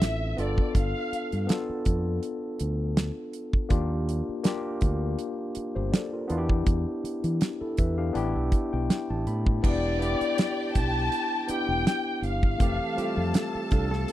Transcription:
0.00 0.33 A1 medium
0.00 0.39 C4 medium
0.00 0.38 D4 medium
0.00 0.39 F4 medium
0.00 0.39 A4 medium
0.00 0.39 E5 medium
0.00 snare loud
0.00 closed hi-hat medium
0.37 0.55 G1 medium
0.37 1.36 B3 medium
0.37 1.36 D4 medium
0.37 1.37 F4 medium
0.37 1.37 A4 medium
0.37 0.76 D5 medium
0.37 closed hi-hat soft
0.58 kick medium
0.75 0.92 G1 medium
0.75 1.46 F5 medium
0.75 kick loud
0.75 closed hi-hat medium
1.12 muted fingered electric bass stroke soft
1.12 closed hi-hat medium
1.32 1.47 G2 medium
1.32 closed hi-hat soft
1.47 2.79 B3 medium
1.47 2.80 D4 medium
1.47 2.80 F4 medium
1.47 2.81 A4 medium
1.47 snare medium
1.47 closed hi-hat medium
1.70 muted fingered electric bass stroke soft
1.85 2.18 F2 medium
1.85 kick medium
1.85 closed hi-hat medium
2.23 closed hi-hat medium
2.59 3.10 D2 medium
2.59 closed hi-hat medium
2.97 snare loud
2.97 closed hi-hat medium
3.33 closed hi-hat medium
3.53 kick medium
3.69 4.20 D#2 medium
3.69 4.36 A#3 medium
3.69 4.36 D4 medium
3.69 4.37 F4 medium
3.69 4.37 G4 medium
3.69 kick medium
3.69 closed hi-hat medium
4.09 closed hi-hat medium
4.29 muted fingered electric bass stroke soft
4.43 5.76 A#3 medium
4.43 5.76 D4 medium
4.43 5.19 F4 medium
4.43 5.20 G4 medium
4.43 snare loud
4.43 closed hi-hat medium
4.81 5.15 D2 medium
4.81 kick medium
4.81 closed hi-hat medium
5.19 closed hi-hat medium
5.55 muted fingered electric bass stroke soft
5.55 closed hi-hat medium
5.75 5.91 G1 medium
5.75 5.92 G4 medium
5.75 5.92 C5 medium
5.92 6.12 A4 soft
5.92 6.12 D5 medium
5.92 snare loud
5.92 closed hi-hat medium
6.13 6.30 F4 soft
6.13 6.48 A#4 medium
6.28 6.62 E2 medium
6.28 7.28 B3 medium
6.28 7.04 D4 medium
6.28 7.04 E4 medium
6.28 6.38 F4 medium
6.28 closed hi-hat medium
6.38 7.08 G4 medium
6.49 kick medium
6.66 6.84 E2 medium
6.66 kick loud
6.66 closed hi-hat medium
7.04 muted fingered electric bass stroke soft
7.04 closed hi-hat medium
7.24 7.39 E3 medium
7.24 closed hi-hat soft
7.41 snare medium
7.41 closed hi-hat medium
7.61 7.78 E4 soft
7.61 7.77 A4 medium
7.61 muted fingered electric bass stroke soft
7.77 8.11 E2 medium
7.77 7.98 E4 soft
7.77 7.97 B4 medium
7.77 7.97 E5 medium
7.77 kick medium
7.77 closed hi-hat medium
7.98 8.13 D4 soft
7.98 8.15 G4 medium
7.98 8.14 F5 medium
8.13 8.33 A1 medium
8.13 9.46 B3 medium
8.13 9.46 D4 medium
8.13 9.47 E4 medium
8.13 9.48 G4 medium
8.13 8.34 G5 medium
8.13 closed hi-hat medium
8.36 8.50 B1 medium
8.36 8.70 E5 medium
8.52 kick medium
8.52 closed hi-hat medium
8.73 8.88 B1 medium
8.73 8.89 G5 medium
8.90 9.08 G5 medium
8.90 snare loud
8.90 closed hi-hat medium
9.10 9.25 A1 medium
9.10 9.26 A5 medium
9.27 9.59 A2 medium
9.27 9.61 B5 medium
9.27 closed hi-hat soft
9.46 kick medium
9.62 10.14 E1 medium
9.62 9.96 B3 medium
9.62 9.97 D4 medium
9.62 9.97 E4 medium
9.62 12.20 G4 medium
9.62 9.98 G4 medium
9.62 10.71 D5 medium
9.62 12.20 G5 medium
9.62 kick loud
9.62 crash medium
9.99 11.32 B3 medium
9.99 11.32 D4 medium
9.99 11.33 E4 medium
9.99 11.33 G4 medium
9.99 closed hi-hat medium
10.21 muted fingered electric bass stroke soft
10.21 closed hi-hat soft
10.38 snare loud
10.38 closed hi-hat medium
10.75 11.08 B1 medium
10.75 11.50 A5 loud
10.75 kick medium
10.75 closed hi-hat medium
11.12 closed hi-hat medium
11.48 12.47 B3 medium
11.48 12.48 D4 medium
11.48 12.48 E4 medium
11.48 12.49 G4 medium
11.48 12.20 G5 medium
11.48 muted fingered electric bass stroke soft
11.48 closed hi-hat medium
11.68 11.84 E1 medium
11.87 snare loud
11.87 closed hi-hat medium
12.22 12.55 G1 medium
12.22 13.73 F5 medium
12.22 closed hi-hat soft
12.43 kick medium
12.58 12.78 F1 medium
12.58 12.94 E3 medium
12.58 12.92 A3 medium
12.58 12.93 C4 medium
12.58 12.94 G4 medium
12.58 14.12 A4 medium
12.58 14.12 A5 medium
12.58 kick loud
12.58 closed hi-hat medium
12.95 13.03 G3 medium
12.95 14.12 C4 medium
12.95 14.12 F4 medium
12.95 14.12 G4 medium
12.95 muted fingered electric bass stroke soft
12.95 closed hi-hat medium
13.02 14.12 A3 medium
13.17 13.32 F2 medium
13.34 snare loud
13.34 closed hi-hat medium
13.55 muted fingered electric bass stroke soft
13.71 14.04 C2 medium
13.71 13.91 D4 soft
13.71 13.90 F4 medium
13.71 kick medium
13.71 closed hi-hat medium
13.91 14.12 F4 medium
13.91 14.12 A4 medium
13.91 snare soft
14.08 closed hi-hat medium

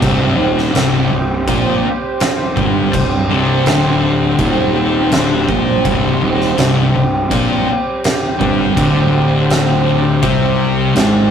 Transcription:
0.00 0.36 C1 loud
0.00 0.36 C2 medium
0.00 0.37 C3 loud
0.00 11.31 C4 medium
0.00 11.31 G4 medium
0.00 11.31 C5 medium
0.00 kick loud
0.00 crash medium
0.37 0.72 D#1 medium
0.37 0.73 D#2 loud
0.37 0.73 D#3 loud
0.58 snare soft
0.74 1.08 C1 loud
0.74 1.10 C2 loud
0.74 1.10 C3 medium
0.74 snare loud
0.74 crash medium
1.11 1.45 C1 medium
1.11 1.40 C2 medium
1.47 1.82 A#1 loud
1.47 1.83 A#2 loud
1.47 1.83 A#3 loud
1.47 kick loud
1.47 crash medium
2.20 snare loud
2.20 crash medium
2.56 2.91 G1 medium
2.56 2.91 G2 loud
2.56 2.92 G3 loud
2.56 kick loud
2.93 3.27 C1 medium
2.93 3.22 C2 medium
2.93 kick loud
2.93 crash medium
3.29 3.64 C1 medium
3.29 3.65 C2 medium
3.29 3.65 C3 loud
3.65 4.35 D1 loud
3.65 4.39 D2 medium
3.65 4.39 D3 loud
3.65 snare loud
3.65 crash medium
4.39 5.08 D#1 medium
4.39 5.11 D#2 loud
4.39 5.11 D#3 loud
4.39 kick loud
4.39 crash medium
5.11 5.46 D1 loud
5.11 5.47 D2 medium
5.11 5.47 D3 loud
5.11 snare loud
5.11 crash medium
5.49 5.82 A#1 medium
5.49 5.84 A#2 loud
5.49 5.84 A#3 loud
5.49 kick loud
5.85 6.19 C1 loud
5.85 6.20 C2 medium
5.85 6.21 C3 loud
5.85 kick loud
5.85 crash medium
6.22 6.55 D#1 medium
6.22 6.57 D#2 medium
6.22 6.57 D#3 loud
6.41 snare soft
6.58 6.92 C1 medium
6.58 6.93 C2 medium
6.58 6.93 C3 loud
6.58 snare loud
6.58 crash medium
6.94 7.28 C1 medium
6.94 7.24 C2 medium
7.30 7.65 A#1 medium
7.30 7.66 A#2 medium
7.30 7.66 A#3 loud
7.30 kick loud
7.30 crash medium
8.04 snare loud
8.04 crash medium
8.39 8.74 G1 medium
8.39 8.75 G2 medium
8.39 8.75 G3 loud
8.39 kick loud
8.75 10.19 D1 loud
8.75 10.20 D2 medium
8.75 10.21 D3 loud
8.75 kick loud
8.75 crash medium
9.50 snare loud
9.50 crash medium
10.21 10.92 C2 loud
10.21 10.93 C3 medium
10.21 10.94 C4 loud
10.21 kick loud
10.21 crash medium
10.95 11.31 G#1 loud
10.95 11.31 G#2 loud
10.95 11.31 G#3 loud
10.95 snare loud
10.95 crash medium

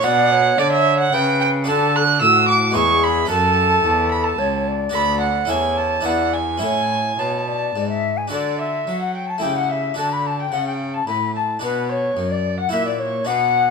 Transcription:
0.01 0.55 B2 medium
0.01 1.61 D4 medium
0.01 1.62 F#4 medium
0.01 0.34 D5 medium
0.01 0.60 F#5 loud
0.05 0.58 B2 medium
0.32 1.15 C#5 medium
0.58 1.09 D3 medium
0.58 1.12 D3 medium
0.58 0.72 D5 loud
0.72 0.99 E5 loud
1.00 1.15 F#5 medium
1.13 1.63 C#3 medium
1.13 1.70 C#3 medium
1.13 1.67 B4 medium
1.13 1.40 G5 loud
1.41 1.49 G5 loud
1.64 2.18 D3 medium
1.64 2.71 D4 medium
1.64 2.71 F#4 medium
1.64 2.02 A4 medium
1.68 2.23 D3 medium
1.68 1.98 A5 loud
1.96 2.21 F#6 loud
2.21 2.72 A2 medium
2.21 2.77 A2 medium
2.21 2.77 F#4 medium
2.21 2.48 E6 loud
2.49 2.75 D6 loud
2.71 3.26 G#3 medium
2.71 3.26 B3 medium
2.71 3.27 E4 medium
2.75 3.26 E2 medium
2.75 3.29 E2 medium
2.75 3.29 G#4 medium
2.75 3.05 C#6 loud
3.04 3.30 B5 loud
3.25 3.80 C#4 medium
3.25 4.88 F#4 soft
3.25 4.89 A4 medium
3.30 3.83 F#2 medium
3.30 3.80 F#2 medium
3.30 4.40 A4 medium
3.30 4.10 A5 loud
3.84 4.35 E2 medium
3.84 4.38 E2 medium
4.12 4.26 B5 medium
4.24 4.66 A5 medium
4.39 4.90 C#2 medium
4.39 4.92 C#2 medium
4.39 4.69 C#5 medium
4.68 5.51 D5 medium
4.89 5.47 D2 medium
4.89 5.45 D4 medium
4.89 5.46 F#4 soft
4.89 5.46 A4 soft
4.94 5.45 D2 medium
4.94 5.19 B5 loud
5.21 5.51 F#5 medium
5.45 6.04 E2 medium
5.45 6.01 C#4 medium
5.45 6.01 E4 soft
5.45 6.03 A4 soft
5.49 6.01 E2 medium
5.49 6.07 C#5 medium
5.49 5.79 G#5 medium
5.78 6.07 A5 medium
6.01 6.58 D4 soft
6.01 6.58 E4 soft
6.01 6.59 B4 soft
6.05 6.58 E2 soft
6.05 6.63 E2 medium
6.05 6.37 D5 medium
6.05 6.35 F#5 medium
6.33 6.62 G#5 medium
6.58 7.18 A2 medium
6.58 8.26 C#4 soft
6.58 8.27 E4 soft
6.58 8.28 C#5 soft
6.62 7.15 A2 soft
6.62 7.13 C#5 medium
6.62 7.21 G#5 medium
7.17 7.74 B2 medium
7.17 7.72 B2 soft
7.17 7.45 C#5 medium
7.17 8.04 A5 medium
7.47 7.88 D5 medium
7.75 8.31 G#2 medium
7.75 8.28 G#2 soft
7.89 8.19 E5 medium
8.17 8.32 G#5 medium
8.28 9.37 D4 soft
8.28 9.38 F#4 soft
8.28 9.38 A4 soft
8.28 8.61 D5 medium
8.32 8.84 D3 medium
8.32 8.84 D3 soft
8.32 8.58 D5 medium
8.59 9.01 E5 medium
8.59 9.00 E5 medium
8.87 9.39 F#3 soft
8.87 9.42 F#3 medium
9.00 9.16 F#5 medium
9.00 9.15 F#5 medium
9.15 9.28 G5 medium
9.15 9.32 G5 medium
9.29 9.41 A5 soft
9.29 9.44 A5 medium
9.38 9.94 A3 soft
9.38 9.94 E4 soft
9.38 9.95 G4 soft
9.38 9.55 G5 medium
9.43 9.96 C#3 soft
9.43 9.94 C#3 soft
9.43 9.58 G5 medium
9.56 9.71 F#5 medium
9.56 9.73 F#5 medium
9.70 9.96 E5 medium
9.70 9.98 E5 medium
9.94 10.48 D3 soft
9.94 10.51 D3 medium
9.94 11.57 D4 soft
9.94 11.57 F#4 soft
9.94 10.11 A5 medium
9.99 10.14 A5 medium
10.12 10.28 B5 medium
10.26 10.41 A5 medium
10.26 10.40 A5 medium
10.40 10.53 G5 medium
10.40 10.55 G5 medium
10.52 11.06 C#3 soft
10.52 11.03 C#3 soft
10.52 10.67 F#5 medium
10.67 10.73 G5 medium
10.67 10.96 G5 medium
10.94 11.08 A5 soft
10.94 11.07 A5 medium
11.07 11.61 A2 soft
11.07 11.58 A2 soft
11.07 11.35 B5 medium
11.07 11.16 B5 medium
11.36 11.62 A5 medium
11.36 11.44 A5 medium
11.59 12.16 B2 medium
11.59 12.13 B2 soft
11.59 12.67 D4 soft
11.59 12.68 F#4 soft
11.59 11.91 B4 medium
11.63 11.91 B4 medium
11.89 12.30 C#5 medium
11.89 12.33 C#5 medium
12.17 12.68 F#2 soft
12.17 12.70 F#2 soft
12.31 12.60 D5 medium
12.31 12.58 D5 medium
12.58 12.75 F#5 medium
12.58 12.71 F#5 medium
12.69 13.25 A#2 medium
12.69 13.23 A#2 soft
12.69 13.23 E4 soft
12.69 13.24 F#4 soft
12.69 12.85 E5 medium
12.73 12.88 E5 medium
12.87 13.00 D5 medium
12.99 13.28 C#5 medium
12.99 13.30 C#5 medium
13.25 13.71 B2 medium
13.25 13.71 B2 soft
13.25 13.71 D4 soft
13.25 13.71 F#4 soft
13.25 13.71 F#5 medium
13.29 13.71 F#5 medium

